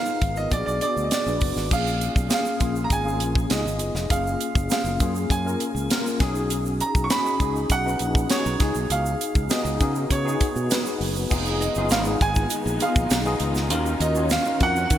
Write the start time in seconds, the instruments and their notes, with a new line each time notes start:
Already playing: tine electric piano B3 D#4 F4 G#4 A#4, grand piano F5
0.05 shaker
0.22 fingered electric bass G#1, kick, closed hi-hat
0.36 grand piano D#5, shaker
0.51 fingered electric bass A#1, tine electric piano B3 D4 F#4 G#4, grand piano D5, kick, closed hi-hat, shaker
0.66 fingered electric bass B1, grand piano D5, shaker
0.81 tine electric piano B3 D4 F#4 G#4, grand piano D5, closed hi-hat, shaker
0.97 fingered electric bass D2, shaker
1.04 grand piano D#5
1.11 grand piano D5, snare, closed hi-hat, shaker
1.26 fingered electric bass A#1, tine electric piano B3 D4 F#4 B4, shaker
1.41 fingered electric bass F#1, kick, open hi-hat
1.56 fingered electric bass G#1, snare, shaker
1.70 fingered electric bass A#1, tine electric piano A#3 C#4 F4 G#4, grand piano F5, kick, crash, shaker
1.87 shaker
2.01 closed hi-hat
2.16 fingered electric bass B1, kick, shaker
2.29 tine electric piano A#3 C#4 F4 G#4, snare, closed hi-hat, shaker
2.33 grand piano F5
2.45 shaker
2.59 fingered electric bass A#1, tine electric piano A#3 C#4 F4 G#4, kick, closed hi-hat, shaker
2.76 shaker
2.84 grand piano A#5
2.90 fingered electric bass G#1, grand piano G#5, kick, closed hi-hat, shaker
3.04 tine electric piano A#3 C#4 F4 G#4, shaker
3.20 fingered electric bass A#1, closed hi-hat, shaker
3.35 kick, shaker
3.49 fingered electric bass C#2, tine electric piano B3 D#4 F4 G#4, grand piano D#5, snare, closed hi-hat, shaker
3.66 fingered electric bass G#1, shaker
3.79 fingered electric bass F#1, closed hi-hat
3.95 fingered electric bass F1, snare, shaker
4.09 fingered electric bass F#1, tine electric piano A#3 C#4 F4 G#4, grand piano F5, kick, closed hi-hat, shaker
4.27 shaker
4.41 closed hi-hat
4.55 fingered electric bass F#1, kick, shaker
4.70 tine electric piano A#3 C#4 F4 G#4, grand piano F5, snare, closed hi-hat, shaker
4.84 fingered electric bass F#1, shaker
5.00 fingered electric bass F#2, tine electric piano A#3 C#4 F4 G#4, kick, closed hi-hat, shaker
5.15 shaker
5.30 fingered electric bass F#2, grand piano G#5, kick, closed hi-hat, shaker
5.45 tine electric piano A#3 C#4 F4 A#4, shaker
5.60 closed hi-hat, shaker
5.75 fingered electric bass C#2, shaker
5.90 tine electric piano A#3 C#4 F4 A#4, snare, closed hi-hat, shaker
6.06 shaker
6.20 fingered electric bass B1, tine electric piano C#4 D#4 F#4 G#4, kick, snare, closed hi-hat
6.35 shaker
6.50 closed hi-hat, shaker
6.65 shaker
6.80 grand piano A#5, closed hi-hat
6.95 fingered electric bass B1, kick, shaker
7.04 grand piano C#6
7.10 tine electric piano C#4 D#4 F#4 G#4, grand piano B5, snare, closed hi-hat, shaker
7.26 shaker
7.40 fingered electric bass C#2, tine electric piano C#4 D#4 F#4 G#4, kick, closed hi-hat, shaker
7.56 shaker
7.70 fingered electric bass B1, grand piano F#5, kick, closed hi-hat, shaker
7.85 tine electric piano C#4 D#4 F#4 B4, shaker
7.99 fingered electric bass A#1, closed hi-hat, shaker
8.15 kick, shaker
8.30 tine electric piano C#4 D#4 F#4 G#4, grand piano C#5, snare, closed hi-hat, shaker
8.46 fingered electric bass B1, shaker
8.59 fingered electric bass C#2, tine electric piano B3 D#4 F4 G#4, kick, snare, closed hi-hat
8.67 tine electric piano F#4
8.75 fingered electric bass B1, shaker
8.90 fingered electric bass C#2, grand piano F5, closed hi-hat, shaker
9.06 shaker
9.21 closed hi-hat
9.35 fingered electric bass C#2, kick, shaker
9.49 tine electric piano B3 D#4 F#4 G#4, grand piano D#5, snare, closed hi-hat, shaker
9.65 fingered electric bass C#2, shaker
9.80 fingered electric bass C#3, tine electric piano B3 D#4 F#4 G#4, kick, closed hi-hat, shaker
9.95 shaker
10.10 fingered electric bass C#3, grand piano C#5, kick, closed hi-hat, shaker
10.24 tine electric piano B3 D#4 F#4 G#4, shaker
10.41 kick, closed hi-hat, shaker
10.56 fingered electric bass B2, shaker
10.70 tine electric piano B3 D#4 F#4 B4, snare, closed hi-hat, shaker
10.86 shaker
11.01 fingered electric bass F#1, open hi-hat
11.16 shaker
11.30 fingered electric bass F1, string section D#3 G#3 B3 D#4, tine electric piano B3 D#4 F4 G#4, kick, crash, shaker
11.45 shaker
11.61 grand piano D#5, closed hi-hat, shaker
11.75 fingered electric bass F#1, tine electric piano B3 D#4 F4 G#4, shaker
11.89 fingered electric bass G#1, grand piano F5, snare, closed hi-hat, shaker
12.04 tine electric piano B3 D#4 F4 G#4, shaker
12.21 fingered electric bass G#1, grand piano G#5, kick, closed hi-hat
12.35 kick, shaker
12.50 closed hi-hat, shaker
12.66 fingered electric bass A#1, shaker
12.80 tine electric piano B3 D#4 F4 G#4, grand piano F5, closed hi-hat, shaker
12.96 fingered electric bass A#1, kick, shaker
13.10 fingered electric bass B1, snare, closed hi-hat, shaker
13.25 tine electric piano B3 D#4 F4 G#4, shaker
13.40 fingered electric bass C#2, closed hi-hat
13.55 snare, shaker
13.70 fingered electric bass D#2, tine electric piano C#4 F4 F#4 A#4, string section C#4 F#4, closed hi-hat, shaker
13.86 shaker
14.00 fingered electric bass D#2, grand piano D#5, closed hi-hat, shaker
14.15 tine electric piano C#4 F4 F#4 C#5, shaker
14.29 grand piano F5, snare, closed hi-hat, shaker
14.45 tine electric piano C#4 D#4 F#4 A#4, shaker
14.60 fingered electric bass F2, grand piano F#5, kick, closed hi-hat
14.76 shaker
14.90 fingered electric bass D#3, kick, closed hi-hat, shaker